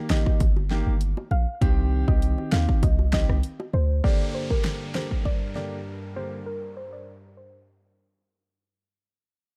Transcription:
0.10 0.25 A1 loud
0.10 0.38 D#3 medium
0.10 0.38 A#3 medium
0.10 0.38 G4 medium
0.10 0.21 D#5 medium
0.10 finger snap medium
0.10 snare loud
0.10 low bongo medium
0.26 kick medium
0.26 high bongo medium
0.40 0.83 G1 loud
0.40 kick loud
0.40 closed hi-hat medium
0.40 high bongo medium
0.56 high bongo medium
0.70 0.92 D#3 medium
0.70 0.92 A#3 medium
0.70 0.92 G4 medium
0.70 snare medium
0.87 1.14 G1 medium
1.01 closed hi-hat medium
1.17 high bongo medium
1.31 1.46 A#1 loud
1.31 1.43 F5 medium
1.31 low bongo medium
1.61 2.04 C2 loud
1.61 2.04 D#3 loud
1.61 2.04 C4 medium
1.61 2.04 G4 loud
1.61 kick loud
1.61 closed hi-hat medium
2.08 2.35 C2 medium
2.08 2.49 D#3 medium
2.08 2.49 C4 medium
2.08 2.49 G4 medium
2.08 2.18 D#5 medium
2.08 kick loud
2.08 high bongo medium
2.22 closed hi-hat medium
2.38 high bongo medium
2.52 2.67 D#2 medium
2.52 2.80 D#3 medium
2.52 2.80 C4 medium
2.52 2.81 G4 medium
2.52 2.64 F5 medium
2.52 finger snap medium
2.52 snare loud
2.52 low bongo medium
2.68 kick medium
2.68 high bongo medium
2.83 3.25 C2 loud
2.83 2.94 D#5 medium
2.83 kick loud
2.83 closed hi-hat medium
2.83 high bongo medium
2.99 high bongo medium
3.12 3.35 D#3 medium
3.12 3.35 C4 medium
3.12 3.35 G4 medium
3.12 3.25 D#5 medium
3.12 finger snap medium
3.12 kick loud
3.12 snare loud
3.29 3.42 C2 loud
3.29 cross-stick medium
3.43 closed hi-hat medium
3.60 high bongo medium
3.73 4.01 D2 loud
3.73 3.85 C5 medium
3.73 low bongo medium
4.04 8.85 G2 medium
4.04 4.46 D3 medium
4.04 8.85 G3 medium
4.04 4.46 A#3 medium
4.04 8.85 D4 medium
4.04 4.47 G4 loud
4.04 8.85 A#4 medium
4.04 4.15 D5 loud
4.04 kick loud
4.04 downlifter medium
4.35 4.46 C5 medium
4.50 4.91 D3 medium
4.50 4.91 A#3 medium
4.50 4.92 G4 medium
4.50 4.61 A#4 medium
4.50 kick medium
4.64 finger snap medium
4.64 snare loud
4.94 5.23 D3 medium
4.94 5.23 A#3 medium
4.94 5.23 G4 medium
4.94 5.06 C5 medium
4.94 finger snap medium
4.94 snare loud
5.11 kick medium
5.25 5.37 D5 medium
5.25 kick loud
5.55 5.77 D3 medium
5.55 5.77 A#3 medium
5.55 5.77 G4 medium
5.55 5.67 D5 medium
5.55 snare medium
6.16 6.38 D3 medium
6.16 6.38 A#3 medium
6.16 6.38 G4 medium
6.16 6.28 C5 medium
6.46 6.58 A#4 loud
6.77 6.88 C5 medium
6.93 7.03 D5 medium
7.37 7.49 C5 medium

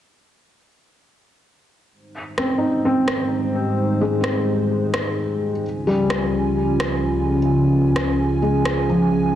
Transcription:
1.91 5.60 G#3 medium
1.91 5.60 D#4 medium
1.91 5.60 G4 medium
1.91 5.60 C5 medium
2.38 2.84 C4 medium
2.38 cross-stick medium
2.58 4.00 D#4 soft
2.85 4.19 C4 medium
3.08 cross-stick medium
4.01 5.51 G#3 medium
4.21 5.63 C4 soft
4.21 cross-stick medium
4.94 cross-stick loud
5.64 9.32 C#3 medium
5.64 9.32 C#4 medium
5.64 9.32 F4 medium
5.64 9.35 G#5 medium
5.87 7.37 G3 medium
6.10 cross-stick medium
6.80 cross-stick loud
7.96 cross-stick loud
8.42 9.35 G#3 soft
8.65 cross-stick medium
8.89 9.35 F3 medium

